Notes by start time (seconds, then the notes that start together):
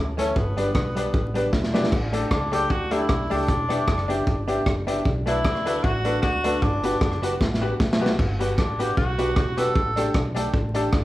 Already playing: D2
0.17 E3 A3 C#4 E4 A4, closed hi-hat
0.36 G1 B3, kick
0.57 G3 B3 D4 G4 B4, closed hi-hat
0.75 B1, muted hollow-body jazz guitar stroke, kick, cross-stick
0.95 G3 B3 D4 G4 B4, closed hi-hat
1.14 A1, kick
1.34 G3 B3 D4 G4 B4, closed hi-hat
1.53 E1, kick, snare
1.64 snare
1.73 G3 B3 D4 G4 B4, snare
1.84 snare
1.92 A1, kick, crash
2.13 A3 D4 G4 A4, closed hi-hat
2.31 C#2 D4, kick, cross-stick
2.52 A3 D4 G4 A4, closed hi-hat
2.70 D2 F#4, kick
2.91 A3 D4 E4 G4 A4, closed hi-hat
3.09 B1, kick, cross-stick
3.30 C#2 A3 D4 G4 A4, open hi-hat
3.48 E1, kick, hi-hat pedal
3.69 B3 D4 E4 G4, cross-stick, closed hi-hat
3.88 F#1, kick, cross-stick
3.98 cross-stick
4.08 B3 D4 E4 G4, closed hi-hat
4.27 G1, muted hollow-body jazz guitar stroke, kick
4.48 B3 D4 E4 G4, closed hi-hat
4.66 F#1, kick, cross-stick
4.87 B3 D4 E4 G4, closed hi-hat
5.05 B1, kick
5.26 A3 D4 E4 F#4 A4 B4, closed hi-hat
5.45 D2, kick, cross-stick
5.55 cross-stick
5.65 A3 D4 F#4 A4 B4, closed hi-hat
5.84 A1 F#4, kick
6.05 A3 D4 F#4 A4 B4, closed hi-hat
6.22 D2 F#4, kick, cross-stick
6.44 A3 D4 F#4 A4 B4, closed hi-hat
6.62 G1 D4, kick
6.83 B3 D4 F#4 G4 B4, closed hi-hat
7.01 F#1, kick, cross-stick
7.12 cross-stick
7.22 B3 D4 F#4 G4 B4, closed hi-hat
7.40 A1, muted hollow-body jazz guitar stroke, kick, snare
7.54 snare
7.61 B3 D4 F#4 G4 B4
7.80 B1, kick, snare
7.93 snare
8.01 B3 D4 F#4 G4 B4
8.06 snare
8.19 G1, kick, crash
8.39 B3 D4 F#4 G4 B4, closed hi-hat
8.58 A1 D4, kick, cross-stick
8.79 B3 D4 F#4 G4 B4, closed hi-hat
8.97 B1 F#4, muted hollow-body jazz guitar stroke, kick
9.18 B3 D4 F#4 G4 B4, closed hi-hat
9.36 E1, kick, cross-stick
9.57 B3 D4 F#4 G4 A4 B4, closed hi-hat
9.75 A1, kick
9.96 A3 D4 G4 A4, cross-stick, closed hi-hat
10.14 B1, kick, cross-stick
10.35 A3 D4 G4 A4, closed hi-hat
10.53 A1, muted hollow-body jazz guitar stroke, kick
10.74 A3 D4 G4 A4, closed hi-hat
10.93 G1, kick, cross-stick